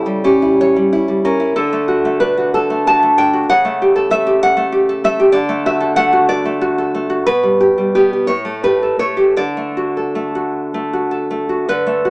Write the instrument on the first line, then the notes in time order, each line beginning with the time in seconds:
nylon-string guitar
Already playing: C#3 E4 A4
0.06 G3
0.24 C#4 G4
0.42 E4
0.61 C#5
0.76 G3
0.93 E4
1.08 G3
1.25 C#4 A#4
1.40 E4
1.56 D3 A4
1.73 A3
1.88 F#4
2.05 A3
2.20 D4 B4
2.38 F#4
2.54 A4
2.70 A3
2.87 F#4 A5
3.03 A3
3.18 D4 G5
3.33 F#4
3.49 C#3 F#5
3.65 A3
3.82 G4
3.96 A4
4.11 A3 E5
4.27 G4
4.43 F#5
4.57 A3
4.72 G4
4.89 A4
5.04 A3 E5
5.20 G4
5.32 D3 D5
5.49 A3
5.66 F#4 E5
5.80 A4
5.96 A3 F#5
6.13 F#4
6.29 D5
6.45 A3
6.61 F#4
6.78 A4
6.95 A3
7.10 F#4
7.26 B2 B4
7.43 G3
7.60 G4
7.78 G3
7.95 B3 G4
8.13 G4
8.27 A2 C#5
8.45 A3
8.63 G4 B4
8.83 A4
8.99 A3 C#5
9.17 G4
9.37 D3 D5
9.57 A3
9.77 F#4
9.97 A4
10.15 A3
10.35 F#4
10.74 A3
10.93 F#4
11.11 A4
11.31 A3
11.49 F#4
11.69 D3 B4
11.87 A3
12.05 F#4